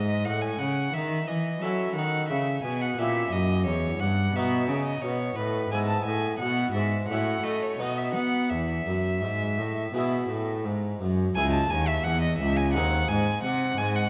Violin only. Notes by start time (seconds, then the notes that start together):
Already playing: D#5
0.25 F#5
0.41 G#5
0.59 F#5
0.93 E5
1.27 D#5
1.62 E5
1.96 F#5
2.29 E5
2.64 G#5
2.81 F#5
2.98 E5
3.32 D#5
3.66 C#5
4.00 F#5
4.36 E5
4.86 D#5
5.02 C#5
5.36 B4
5.71 G#5
5.88 A5
6.05 G#5
6.39 F#5
6.74 E5
7.09 F#5
7.44 D#5
7.62 C#5
7.80 D#5
7.97 E5
8.14 F#5
8.50 E5
11.35 G#5
11.53 A5
11.70 G#5
11.88 E5
12.04 F#5
12.22 D#5
12.39 E5
12.57 G#5
12.74 F#5
13.08 G#5
13.43 F#5
13.78 G#5
13.96 F#5